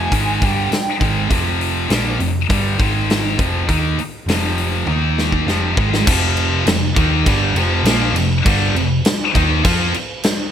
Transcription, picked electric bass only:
0.12 G#1
0.42 G1
0.71 muted picked electric bass stroke
1.01 G#1
1.30 F1
1.89 A#1
2.19 F1
2.49 G1
2.80 G#1
3.39 F1
3.69 D#2
3.98 muted picked electric bass stroke
4.26 F1
4.86 D#2
5.47 F1
5.77 G#1
6.07 F1
6.66 F1
6.96 D#2
7.26 G1
7.54 F1
7.83 A#1
8.12 F1
8.46 G1
8.73 F1
9.35 D#2
9.65 F2

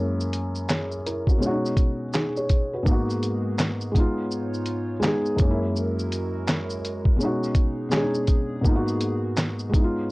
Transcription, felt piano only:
Already playing: F#2 G#3 A#3 C#4 E4
0.70 G#4 C#5
1.06 E4 A#4
1.29 C#4 F#4
1.38 B2 G#3
1.42 C#4 D4 F#4
1.51 D#4
2.15 D#4 G#4
2.37 G#4 C#5
2.73 F#4 B4
2.83 G#2 A#3
2.87 B3 D#4 F#4
3.92 G#3 B3
3.97 D#4 F4
5.00 G#3 B3
5.05 D#4 G#4
5.36 F#2 G#3
5.40 A#3 C#4 D#4
5.51 E4
7.17 B2 G#3 C#4
7.23 D#4 F#4
7.89 B2 G#3 C#4
7.95 D4 G#4
8.02 D#4
8.61 G#2 A#3
8.65 B3 D#4 F4
8.76 F#4
9.69 G#3 B3
9.75 D#4 E4
9.84 F4

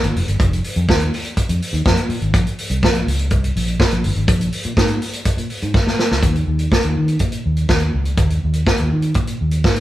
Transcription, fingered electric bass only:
0.03 G#1
0.16 F1
0.28 G1
0.40 F1
0.76 F2
0.89 D#2
1.37 muted fingered electric bass stroke
1.49 F2
1.73 D#2
1.86 F2
2.09 A#2
2.21 G#1
2.34 A#1
2.70 C2
2.83 A#1
3.07 C#2
3.31 C2
3.56 A#1
3.92 A#1
4.04 G1
4.15 G#1
4.28 A#1
4.65 A#2
4.77 G#2
5.26 muted fingered electric bass stroke
5.37 A#2
5.63 G#2
5.87 A#2
6.11 C#2
6.23 D#2
6.47 D#2
6.84 D#2
6.96 D#3
7.20 A#2
7.46 D#2
7.69 D#2
7.94 C#2
8.18 D#2
8.44 D#2
8.80 D#2
8.93 D#3
9.15 A#2
9.41 D#2
9.64 G#2

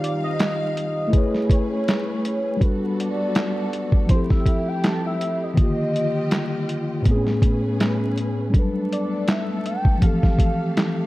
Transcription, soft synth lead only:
0.03 D5
0.24 D#5
1.52 C#5
2.62 B4
2.99 D5
4.10 C5
4.31 E5
4.69 G5
4.84 A5
5.07 E5
5.43 D#5
8.93 D5
9.29 E5
9.66 G5
10.03 F5

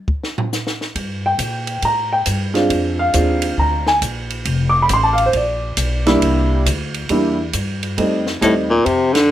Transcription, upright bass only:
0.96 G2
1.38 A#2
1.82 A2
2.27 G2
2.70 F2
3.14 D#2
3.57 D2
4.02 A#1
4.45 F1
4.90 A1
5.33 A#1
5.77 B1
6.22 C2
6.66 D2
7.09 E2
7.54 G2
7.98 F2
8.42 D#2
8.86 F2

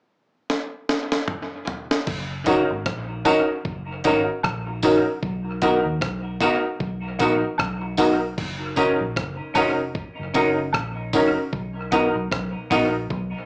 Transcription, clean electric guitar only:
2.47 D#4 F#4 A#4
3.25 D#4 F#4 A#4
4.05 D#4 F#4 A#4
4.67 muted clean electric guitar stroke
4.83 D#4 F#4 A#4
5.62 D#4 F#4 A#4
6.40 D#4 F#4 A#4
7.19 D#4 F#4 A#4
7.82 muted clean electric guitar stroke
7.98 D#4 F#4 A#4
8.76 C#4 D#4 A#4
9.54 C#4 D#4 A#4
10.34 C#4 D#4 A#4
10.57 muted clean electric guitar stroke
11.13 C#4 D#4 A#4
11.91 B3 D#4 A#4
12.70 B3 D#4 A#4

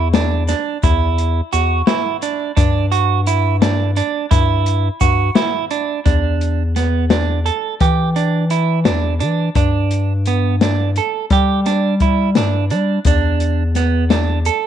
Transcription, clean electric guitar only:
0.14 D4
0.49 D4
0.84 E4
1.53 F#4
1.87 E4
2.23 D4
2.57 D4
2.92 F#4
3.27 E4
3.62 D4
3.97 D4
4.31 E4
5.01 F#4
5.36 E4
5.71 D4
6.06 D4
6.76 B3
7.11 D4
7.46 A4
7.81 G4
8.16 D4
8.51 E4
8.85 D4
9.20 D4
9.56 D4
10.27 B3
10.62 D4
10.98 A4
11.32 G4
11.66 D4
12.02 E4
12.37 D4
12.71 D4
13.07 D4
13.76 B3
14.11 D4
14.46 A4

